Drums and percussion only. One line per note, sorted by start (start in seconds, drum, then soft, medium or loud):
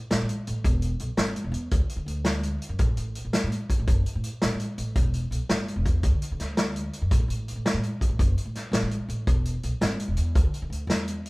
0.11 snare medium
0.11 closed hi-hat medium
0.29 closed hi-hat medium
0.47 closed hi-hat medium
0.64 kick medium
0.64 closed hi-hat medium
0.82 closed hi-hat soft
1.00 closed hi-hat soft
1.17 snare medium
1.17 closed hi-hat medium
1.36 closed hi-hat soft
1.54 closed hi-hat soft
1.71 kick medium
1.71 closed hi-hat medium
1.90 closed hi-hat soft
2.08 closed hi-hat soft
2.25 snare medium
2.25 closed hi-hat medium
2.43 closed hi-hat soft
2.62 closed hi-hat medium
2.79 kick medium
2.79 closed hi-hat medium
2.97 closed hi-hat soft
3.15 closed hi-hat soft
3.33 snare medium
3.33 closed hi-hat medium
3.52 closed hi-hat soft
3.70 kick medium
3.70 closed hi-hat medium
3.88 kick medium
3.88 closed hi-hat medium
4.06 closed hi-hat soft
4.24 closed hi-hat soft
4.42 snare medium
4.42 closed hi-hat medium
4.60 closed hi-hat medium
4.78 closed hi-hat soft
4.95 kick medium
4.95 closed hi-hat medium
5.14 closed hi-hat soft
5.32 closed hi-hat soft
5.49 snare medium
5.49 closed hi-hat medium
5.68 closed hi-hat soft
5.86 kick medium
5.86 closed hi-hat soft
6.03 kick medium
6.03 closed hi-hat medium
6.22 closed hi-hat medium
6.40 snare soft
6.40 closed hi-hat soft
6.57 snare medium
6.57 closed hi-hat medium
6.76 closed hi-hat medium
6.93 closed hi-hat medium
7.11 kick medium
7.11 closed hi-hat medium
7.30 closed hi-hat soft
7.48 closed hi-hat soft
7.66 snare medium
7.66 closed hi-hat medium
7.83 closed hi-hat soft
8.01 kick medium
8.01 closed hi-hat medium
8.19 kick medium
8.19 closed hi-hat medium
8.38 closed hi-hat soft
8.55 snare soft
8.55 closed hi-hat soft
8.73 snare medium
8.73 closed hi-hat medium
8.91 closed hi-hat soft
9.10 closed hi-hat soft
9.27 kick medium
9.27 closed hi-hat medium
9.45 closed hi-hat soft
9.63 closed hi-hat medium
9.81 snare medium
9.81 closed hi-hat medium
10.00 closed hi-hat medium
10.17 closed hi-hat medium
10.35 kick medium
10.35 closed hi-hat medium
10.54 closed hi-hat soft
10.72 closed hi-hat soft
10.90 snare medium
10.90 closed hi-hat medium
11.08 closed hi-hat medium
11.26 closed hi-hat soft